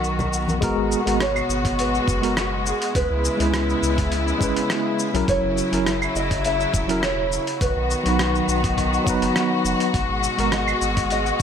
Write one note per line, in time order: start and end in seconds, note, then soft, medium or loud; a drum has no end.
0.00 0.59 B1 medium
0.00 0.60 D#3 medium
0.00 0.57 F#3 medium
0.00 0.58 B3 medium
0.00 0.60 B3 medium
0.00 0.59 D#4 medium
0.00 0.60 F#4 medium
0.00 0.58 A#4 medium
0.00 0.60 A#4 medium
0.04 shaker soft
0.19 low conga medium
0.19 shaker soft
0.33 shaker medium
0.48 high conga medium
0.48 shaker soft
0.61 0.72 G#1 medium
0.61 2.93 B2 medium
0.61 1.00 G#3 loud
0.61 5.24 G#3 medium
0.61 1.00 B3 medium
0.61 2.93 B3 medium
0.61 2.93 F#4 medium
0.61 1.01 F#4 medium
0.61 1.01 A#4 loud
0.61 kick loud
0.61 open hi-hat soft
0.61 shaker soft
0.77 0.95 G#1 medium
0.92 shaker medium
1.06 1.42 G#1 medium
1.06 1.23 G#3 medium
1.06 1.24 B3 medium
1.06 1.24 F#4 medium
1.06 1.25 A#4 medium
1.06 open hi-hat medium
1.06 shaker soft
1.20 1.81 C#5 loud
1.20 cross-stick loud
1.20 open hi-hat soft
1.20 shaker soft
1.36 claves medium
1.36 shaker soft
1.49 2.00 G#1 medium
1.49 shaker medium
1.65 kick loud
1.65 open hi-hat medium
1.65 shaker soft
1.79 2.33 B4 loud
1.79 open hi-hat soft
1.79 shaker soft
1.95 shaker soft
2.08 2.72 F#1 medium
2.08 kick loud
2.08 shaker medium
2.22 2.33 G#3 medium
2.22 2.33 B3 medium
2.22 2.34 F#4 medium
2.22 2.34 A#4 medium
2.22 open hi-hat medium
2.22 shaker soft
2.37 cross-stick loud
2.37 open hi-hat soft
2.37 shaker soft
2.66 2.95 G#4 medium
2.66 shaker medium
2.82 open hi-hat medium
2.82 shaker soft
2.95 3.05 C#2 medium
2.95 5.26 C#3 medium
2.95 5.26 B3 medium
2.95 5.26 E4 loud
2.95 4.95 B4 loud
2.95 kick loud
2.95 open hi-hat soft
2.95 shaker soft
3.11 3.29 C#2 loud
3.25 shaker medium
3.37 3.75 C#2 medium
3.37 4.36 G#3 medium
3.37 4.37 C#4 medium
3.37 4.38 E4 medium
3.37 open hi-hat medium
3.37 shaker soft
3.43 4.39 B4 medium
3.54 cross-stick loud
3.54 open hi-hat soft
3.54 shaker soft
3.70 shaker soft
3.82 4.33 C#2 medium
3.82 shaker medium
3.98 kick loud
3.98 open hi-hat medium
3.98 shaker soft
4.12 open hi-hat soft
4.12 shaker soft
4.28 shaker soft
4.38 5.09 G#3 medium
4.38 5.10 C#4 medium
4.38 5.11 E4 medium
4.38 kick loud
4.38 shaker medium
4.44 5.12 B4 medium
4.56 open hi-hat medium
4.56 shaker soft
4.70 cross-stick loud
4.70 open hi-hat soft
4.70 shaker soft
4.99 shaker medium
5.13 5.23 B1 loud
5.13 5.68 F#3 medium
5.13 5.69 C#4 medium
5.13 5.69 E4 medium
5.13 5.70 A#4 medium
5.13 open hi-hat medium
5.13 shaker soft
5.28 5.38 F#1 loud
5.28 7.59 C#3 medium
5.28 7.59 F#3 medium
5.28 7.59 E4 loud
5.28 5.83 C#5 loud
5.28 kick loud
5.28 open hi-hat soft
5.28 shaker soft
5.44 5.62 F#1 loud
5.58 shaker medium
5.72 6.08 F#1 medium
5.72 5.89 F#3 medium
5.72 5.90 C#4 medium
5.72 5.90 E4 medium
5.72 5.91 A#4 medium
5.72 open hi-hat medium
5.72 shaker soft
5.86 cross-stick loud
5.86 open hi-hat soft
5.86 shaker soft
6.02 claves medium
6.02 shaker soft
6.15 6.66 F#1 medium
6.15 6.43 D#5 loud
6.15 shaker medium
6.31 kick loud
6.31 open hi-hat medium
6.31 shaker soft
6.44 6.99 E5 loud
6.44 open hi-hat soft
6.44 shaker soft
6.60 shaker soft
6.74 7.39 E1 medium
6.74 kick loud
6.74 shaker medium
6.88 6.99 F#3 medium
6.88 7.00 C#4 medium
6.88 7.00 E4 medium
6.88 7.00 A#4 loud
6.88 open hi-hat medium
6.88 shaker soft
7.03 7.57 C#5 medium
7.03 cross-stick loud
7.03 open hi-hat soft
7.03 shaker soft
7.32 shaker medium
7.47 open hi-hat medium
7.47 shaker soft
7.61 7.71 B1 medium
7.61 9.92 D#3 medium
7.61 9.92 B3 medium
7.61 11.42 F#4 loud
7.61 8.45 B4 medium
7.61 kick loud
7.61 open hi-hat soft
7.61 shaker soft
7.77 7.95 B1 loud
7.91 shaker medium
8.03 8.41 B1 medium
8.03 9.02 F#3 medium
8.03 9.03 B3 medium
8.03 9.04 D#4 medium
8.03 open hi-hat soft
8.03 shaker soft
8.09 9.05 B4 medium
8.19 cross-stick loud
8.19 open hi-hat soft
8.19 shaker soft
8.35 shaker soft
8.48 8.99 B1 medium
8.48 shaker medium
8.64 kick loud
8.64 open hi-hat medium
8.64 shaker soft
8.78 kick medium
8.78 open hi-hat soft
8.78 shaker soft
8.94 shaker soft
9.04 9.91 F#3 loud
9.04 9.92 B3 medium
9.04 9.93 D#4 medium
9.04 kick loud
9.04 shaker medium
9.10 9.94 B4 loud
9.22 9.31 F#1 medium
9.22 open hi-hat medium
9.22 shaker soft
9.36 cross-stick loud
9.36 open hi-hat soft
9.36 shaker soft
9.65 9.75 F#1 loud
9.65 shaker medium
9.80 open hi-hat medium
9.80 shaker soft
9.94 10.04 G#1 loud
9.94 11.42 B2 medium
9.94 11.42 G#3 medium
9.94 kick loud
9.94 open hi-hat soft
9.94 shaker soft
10.10 10.28 G#1 medium
10.23 shaker medium
10.37 10.74 G#1 medium
10.37 10.55 G#3 medium
10.37 10.56 B3 medium
10.37 10.56 F#4 medium
10.37 10.56 A#4 medium
10.37 open hi-hat medium
10.37 shaker soft
10.52 11.11 D#5 medium
10.52 cross-stick loud
10.52 open hi-hat soft
10.52 shaker soft
10.68 claves medium
10.68 shaker soft
10.82 11.32 G#1 medium
10.82 shaker medium
10.97 kick medium
10.97 open hi-hat medium
10.97 shaker soft
11.10 11.42 D#5 loud
11.10 open hi-hat soft
11.10 shaker soft
11.26 shaker soft